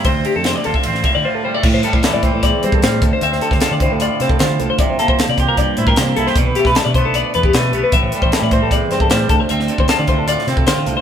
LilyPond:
<<
  \new Staff \with { instrumentName = "Clean electric guitar" } { \time 4/4 \key d \minor \tempo 4 = 153 c''8 g'16 a'16 c''16 d''16 a'16 e''16 c''8 e''16 d''16 c''16 a'16 c''16 d''16 | e''16 c''16 a'16 c''16 a'16 d''16 c''16 a'16 d''8 c''16 a'16 c''8 a'16 c''16 | e''16 c''16 a'16 c''16 a'16 d''16 c''16 a'16 d''8 c''16 a'16 c''8 a'16 c''16 | d''16 c''16 a'16 c''16 a'16 d''16 c''16 bes'16 d''8 c''16 bes'16 c''8 a'16 c''16 |
d''16 b'16 g'16 b'16 a'16 d''16 c''16 a'16 d''8 b'16 g'16 b'8 g'16 b'16 | e''16 c''16 a'16 c''16 a'16 d''16 c''16 a'16 d''8 c''16 a'16 c''8 a'16 c''16 | e''16 c''16 a'16 c''16 a'16 d''16 c''16 a'16 d''8 c''16 a'16 c''8 a'16 c''16 | }
  \new Staff \with { instrumentName = "Clean electric guitar" } { \time 4/4 \key d \minor << { c'4. f'8 c'4 f'8 g16 a16 | r8 g4 c'4 c'8 g8 r8 | c'4 f'4 f'8 c'8 f'8 r8 | r8 bes4 g'4 e'16 g'16 bes8 e'16 g'16 |
r8 a4 b4 b8 a8 b8 | r8 g4 c'4 c'8 g8 r8 | c'4 f'4 f'8 c'8 f'8 r8 | } \\ { d,4 d4. a,4. | a,4 e4 e,4. d,8~ | d,8 d4 a,2 d,8 | c4 f4 g,2 |
b,4 d4 b,2 | a,4 e4 e,4. d,8~ | d,8 d4 a,2 d,8 | } >> }
  \new Staff \with { instrumentName = "Fingered electric bass" } { \clef bass \time 4/4 \key d \minor d,8 r16 f,8 r16 d,16 r16 a,,8 r16 d16 r4 | a,8 r16 a,16 r16 a,8 a,8 r16 g8 a,8 d,16 r16 | d,8 r16 d,16 r16 d8 d,8 r16 c8 d8 c,16 r16 | c,8 r16 c,16 r16 c8 c,8 r16 a,8 c8 c,16 r16 |
b,,8 r16 b,,16 r16 b,8 b,,8 r16 e,8 b,8 b,,16 r16 | a,,8 r16 a,,16 r16 a,8 a,,8 r16 g,8 a,8 d,16 r16 | d,8 r16 d,16 r16 d8 d,8 r16 c8 d8 c,16 r16 | }
  \new DrumStaff \with { instrumentName = "Drums" } \drummode { \time 4/4 <bd cymr>8 cymr8 <cymr sn>8 cymr16 bd16 cymr16 sn16 <bd cymr>8 r4 | <cymc bd>8 hh16 bd16 <hh sn>8 <hh bd>8 <hh bd>8 hh16 bd16 <hh sn>8 <hh bd>8 | hh16 sn16 hh16 <bd sn>16 <hh sn>8 <hh bd>8 hh8 <hh sn>16 bd16 <hh sn>8 hh8 | <hh bd>8 hh16 bd16 <hh sn>8 <hh bd>8 <hh bd>8 hh16 bd16 <hh sn>8 hh16 sn16 |
<hh bd>8 hh16 <bd sn>16 <hh sn>8 <hh bd>8 hh8 hh16 bd16 <hh sn>8 hh8 | <hh bd>8 hh16 bd16 <hh sn>8 <hh bd>8 <hh bd>8 <hh sn>16 bd16 <hh sn>8 <hh bd>8 | hh16 sn16 hh16 bd16 <hh sn>8 <hh bd>8 hh16 sn16 <hh sn>16 bd16 <hh sn>8 hh8 | }
>>